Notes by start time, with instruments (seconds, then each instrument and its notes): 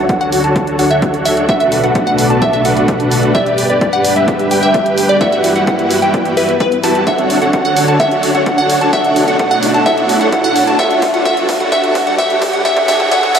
Already playing: analog synth pad D3 F#4 C#5, riser
0.09 supersaw synth D4 F#4 A4 C#5 F#5, digital synth lead F#5, kick, closed hi-hat
0.21 synth pluck F#5, closed hi-hat
0.32 open hi-hat
0.44 supersaw synth D4 F#4 A4 C#5 A5, digital synth lead A5, closed hi-hat
0.56 kick, closed hi-hat
0.67 closed hi-hat
0.79 supersaw synth D4 F#4 A4 C#5 F#5, digital synth lead F#5, open hi-hat
0.91 synth pluck E5, closed hi-hat
1.02 kick, closed hi-hat
1.14 closed hi-hat
1.25 synth pluck E5, open hi-hat
1.37 closed hi-hat
1.49 analog synth pad B2 A3 D5, supersaw synth D4 F#4 A4 B4 F#5, synth pluck E5, digital synth lead F#5, kick, closed hi-hat
1.60 synth pluck E5, closed hi-hat
1.72 open hi-hat
1.84 supersaw synth D4 F#4 A4 B4 F#5, digital synth lead F#5, closed hi-hat
1.95 supersaw synth D4 F#4 A4 B4 F#5, digital synth lead F#5, kick, closed hi-hat
2.07 synth pluck F#5, closed hi-hat
2.18 open hi-hat
2.30 supersaw synth D4 F#4 A4 B4 A5, digital synth lead A5, closed hi-hat
2.42 synth pluck E5, kick, closed hi-hat
2.53 synth pluck E5, closed hi-hat
2.65 supersaw synth D4 F#4 A4 B4 F#5, digital synth lead F#5, open hi-hat
2.77 closed hi-hat
2.88 kick, closed hi-hat
3.00 closed hi-hat
3.12 open hi-hat
3.23 closed hi-hat
3.35 analog synth pad G3 D4 B4, supersaw synth G4 B4 D5, digital synth lead D5, synth pluck E5, kick, closed hi-hat
3.46 closed hi-hat
3.58 open hi-hat
3.70 supersaw synth G4 B4 D5, digital synth lead D5, closed hi-hat
3.81 supersaw synth G4 B4 D5, digital synth lead D5, kick, closed hi-hat
3.93 synth pluck F#5, closed hi-hat
4.04 open hi-hat
4.16 supersaw synth G4 B4 E5, digital synth lead E5, closed hi-hat
4.28 kick, closed hi-hat
4.39 closed hi-hat
4.51 supersaw synth G4 B4 G5, digital synth lead G5, open hi-hat
4.63 synth pluck E5, closed hi-hat
4.74 kick, closed hi-hat
4.86 closed hi-hat
4.98 open hi-hat
5.09 synth pluck D5, closed hi-hat
5.21 analog synth pad G3 E4, supersaw synth E4 F#4 G4 B4 F#5, synth pluck E5, digital synth lead F#5, kick, closed hi-hat
5.32 synth pluck E5, closed hi-hat
5.44 open hi-hat
5.56 supersaw synth E4 F#4 G4 B4 F#5, digital synth lead F#5, closed hi-hat
5.67 supersaw synth E4 F#4 G4 B4 F#5, digital synth lead F#5, kick, closed hi-hat
5.79 closed hi-hat
5.91 open hi-hat
6.02 supersaw synth E4 F#4 G4 B4 G5, digital synth lead G5, closed hi-hat
6.14 kick, closed hi-hat
6.25 closed hi-hat
6.37 supersaw synth E4 F#4 G4 B4 E5, synth pluck B4, digital synth lead E5, open hi-hat
6.49 closed hi-hat
6.60 synth pluck B4, kick, closed hi-hat
6.72 closed hi-hat
6.84 supersaw synth E4 F#4 G4 B4 A5, digital synth lead A5, open hi-hat
6.95 closed hi-hat
7.07 analog synth pad D3 C#5, supersaw synth D4 F#4 A4 C#5 F#5, synth pluck E5, digital synth lead F#5, kick, closed hi-hat
7.18 closed hi-hat
7.30 open hi-hat
7.42 supersaw synth D4 F#4 A4 C#5 F#5, digital synth lead F#5, closed hi-hat
7.53 supersaw synth D4 F#4 A4 C#5 F#5, digital synth lead F#5, kick, closed hi-hat
7.65 synth pluck F#5, closed hi-hat
7.77 open hi-hat
7.88 supersaw synth D4 F#4 A4 C#5 A5, digital synth lead A5, closed hi-hat
8.00 supersaw synth D4 F#4 A4 C#5 F#5, synth pluck E5, digital synth lead F#5, kick, closed hi-hat
8.11 closed hi-hat
8.23 open hi-hat
8.35 supersaw synth D4 F#4 A4 C#5 F#5, digital synth lead F#5, closed hi-hat
8.46 supersaw synth D4 F#4 A4 C#5 F#5, digital synth lead F#5, kick, closed hi-hat
8.58 synth pluck F#5, closed hi-hat
8.70 open hi-hat
8.81 supersaw synth D4 F#4 A4 C#5 A5, digital synth lead A5, closed hi-hat
8.93 analog synth pad B2 A3 D4, supersaw synth D4 F#4 A4 C#5 F#5, synth pluck E5, digital synth lead F#5, kick, closed hi-hat
9.05 closed hi-hat
9.16 open hi-hat
9.28 supersaw synth D4 F#4 A4 C#5 F#5, digital synth lead F#5, closed hi-hat
9.39 supersaw synth D4 F#4 A4 C#5 F#5, digital synth lead F#5, kick, closed hi-hat
9.51 synth pluck F#5, closed hi-hat
9.63 open hi-hat
9.74 supersaw synth D4 F#4 A4 C#5 A5, digital synth lead A5, closed hi-hat
9.86 supersaw synth D4 F#4 A4 C#5 F#5, synth pluck E5, digital synth lead F#5, kick, closed hi-hat
9.98 closed hi-hat
10.09 open hi-hat
10.21 supersaw synth D4 F#4 A4 C#5 F#5, digital synth lead F#5, closed hi-hat
10.32 supersaw synth D4 F#4 A4 C#5 F#5, digital synth lead F#5, kick, closed hi-hat
10.44 synth pluck F#5, closed hi-hat
10.56 open hi-hat
10.67 supersaw synth D4 F#4 A4 C#5 A5, digital synth lead A5, closed hi-hat
10.79 analog synth pad G3 D4 B4, supersaw synth D4 F#4 A4 C#5 F#5, synth pluck E5, digital synth lead F#5, kick, closed hi-hat
10.91 closed hi-hat
11.02 kick, open hi-hat
11.14 supersaw synth D4 F#4 A4 C#5 F#5, digital synth lead F#5, closed hi-hat
11.25 supersaw synth D4 F#4 A4 C#5 F#5, synth pluck E5, digital synth lead F#5, kick, closed hi-hat
11.37 closed hi-hat
11.49 kick, open hi-hat
11.60 supersaw synth D4 F#4 A4 C#5 F#5, digital synth lead F#5, closed hi-hat
11.72 supersaw synth D4 F#4 A4 C#5 F#5, synth pluck E5, digital synth lead F#5, kick, closed hi-hat
11.84 closed hi-hat
11.95 kick, open hi-hat
12.07 supersaw synth D4 F#4 A4 C#5 F#5, digital synth lead F#5, closed hi-hat
12.18 supersaw synth D4 F#4 A4 C#5 F#5, synth pluck E5, digital synth lead F#5, kick, closed hi-hat
12.30 closed hi-hat
12.42 kick, open hi-hat
12.53 supersaw synth D4 F#4 A4 C#5 F#5, digital synth lead F#5, closed hi-hat
12.65 supersaw synth D4 F#4 A4 C#5 F#5, analog synth pad E4 F#4, synth pluck E5, digital synth lead F#5, kick, closed hi-hat
12.77 kick, closed hi-hat
12.88 supersaw synth D4 F#4 A4 C#5 F#5, synth pluck E5, digital synth lead F#5, kick, open hi-hat
13.00 kick, closed hi-hat
13.11 supersaw synth D4 F#4 A4 C#5 F#5, synth pluck E5, digital synth lead F#5, kick, closed hi-hat
13.23 kick, closed hi-hat
13.35 supersaw synth D4 F#4 A4 C#5 F#5, synth pluck E5, digital synth lead F#5, kick, open hi-hat